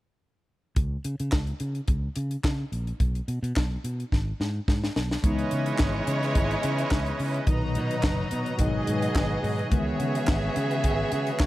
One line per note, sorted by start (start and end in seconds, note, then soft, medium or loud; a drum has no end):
0.76 0.96 C#2 loud
0.76 kick loud
0.76 closed hi-hat medium
1.04 1.15 C#3 medium
1.04 closed hi-hat medium
1.20 1.29 C#3 medium
1.20 closed hi-hat soft
1.32 1.52 C#2 loud
1.32 kick loud
1.32 snare loud
1.32 clap medium
1.47 closed hi-hat soft
1.60 1.80 C#3 medium
1.60 closed hi-hat medium
1.75 closed hi-hat soft
1.88 2.07 C#2 medium
1.88 kick loud
1.88 closed hi-hat medium
2.16 2.35 C#3 medium
2.16 closed hi-hat medium
2.31 closed hi-hat soft
2.44 2.63 C#3 loud
2.44 kick loud
2.44 snare loud
2.44 clap medium
2.72 2.91 A#1 medium
2.72 closed hi-hat soft
2.87 closed hi-hat soft
3.00 3.19 B1 medium
3.00 kick loud
3.00 closed hi-hat medium
3.15 closed hi-hat soft
3.28 3.38 B2 medium
3.28 closed hi-hat medium
3.43 3.52 B2 medium
3.43 closed hi-hat soft
3.56 3.76 B1 loud
3.56 kick loud
3.56 snare loud
3.56 clap medium
3.84 4.03 B2 medium
3.84 closed hi-hat medium
4.00 closed hi-hat soft
4.12 4.31 G#1 loud
4.12 kick medium
4.12 snare medium
4.40 4.59 G#2 medium
4.40 snare medium
4.68 4.87 G#2 medium
4.68 kick loud
4.68 snare medium
4.84 snare medium
4.96 5.15 B1 medium
4.96 snare medium
5.11 snare medium
5.23 5.43 C#2 loud
5.23 7.43 C#3 medium
5.23 7.45 E3 medium
5.23 7.44 E3 medium
5.23 7.45 G#3 medium
5.23 7.43 G#3 medium
5.23 7.44 G#3 medium
5.23 7.45 B3 medium
5.23 7.45 C#4 medium
5.23 7.45 D#4 medium
5.23 7.43 E4 medium
5.23 7.45 B4 medium
5.23 7.43 C#5 medium
5.23 8.56 D#5 medium
5.23 kick loud
5.23 closed hi-hat medium
5.39 closed hi-hat soft
5.51 5.71 C#3 medium
5.51 closed hi-hat medium
5.66 closed hi-hat soft
5.78 5.99 G#1 medium
5.78 kick loud
5.78 snare loud
5.78 clap loud
6.07 6.37 C#3 medium
6.07 closed hi-hat medium
6.23 snare soft
6.23 closed hi-hat soft
6.35 6.55 G#1 medium
6.35 kick loud
6.35 closed hi-hat medium
6.51 closed hi-hat soft
6.63 6.83 C#3 medium
6.63 closed hi-hat medium
6.78 closed hi-hat soft
6.91 7.11 C#2 loud
6.91 kick loud
6.91 snare loud
6.91 clap medium
7.06 closed hi-hat soft
7.19 7.39 C#3 medium
7.19 open hi-hat medium
7.34 closed hi-hat soft
7.46 7.77 B1 loud
7.46 8.58 A#2 medium
7.46 8.56 B2 medium
7.46 8.57 D#3 medium
7.46 9.69 F#3 medium
7.46 8.57 F#3 medium
7.46 8.57 D#4 medium
7.46 8.58 D#4 medium
7.46 11.46 F#4 medium
7.46 8.57 B4 medium
7.46 8.58 A#5 medium
7.46 kick loud
7.46 closed hi-hat medium
7.75 7.95 B2 medium
7.75 closed hi-hat medium
7.91 closed hi-hat soft
8.03 8.23 F#1 medium
8.03 kick loud
8.03 snare loud
8.03 clap medium
8.31 8.51 B2 medium
8.31 closed hi-hat medium
8.46 closed hi-hat soft
8.58 8.79 G#1 medium
8.58 9.68 B2 medium
8.58 9.69 D#3 medium
8.58 9.69 F#3 medium
8.58 9.70 G#3 medium
8.58 9.70 B3 medium
8.58 9.70 D#4 medium
8.58 9.70 G#4 medium
8.58 11.46 G#4 medium
8.58 9.70 D#5 medium
8.58 9.71 D#5 medium
8.58 kick medium
8.58 closed hi-hat medium
8.87 9.07 G#2 medium
8.87 closed hi-hat medium
9.02 closed hi-hat medium
9.15 9.35 G#1 medium
9.15 kick loud
9.15 snare loud
9.15 clap medium
9.43 9.63 G#2 medium
9.43 open hi-hat medium
9.59 closed hi-hat soft
9.70 9.91 C#2 loud
9.70 11.46 C#3 medium
9.70 11.46 D#3 medium
9.70 11.46 E3 medium
9.70 11.46 G#3 medium
9.70 11.46 B3 medium
9.70 11.46 G#4 medium
9.70 11.46 C#5 medium
9.70 11.46 E5 medium
9.70 kick loud
9.70 closed hi-hat medium
10.00 10.19 C#3 medium
10.00 closed hi-hat medium
10.15 closed hi-hat soft
10.27 10.47 G#1 medium
10.27 kick loud
10.27 snare loud
10.27 clap loud
10.56 10.86 C#3 loud
10.56 closed hi-hat medium
10.71 closed hi-hat soft
10.84 11.03 G#1 medium
10.84 kick loud
10.84 closed hi-hat medium
11.12 11.31 C#3 medium
11.12 closed hi-hat medium
11.27 closed hi-hat soft
11.39 11.46 C#2 medium
11.39 kick loud
11.39 snare loud
11.39 clap medium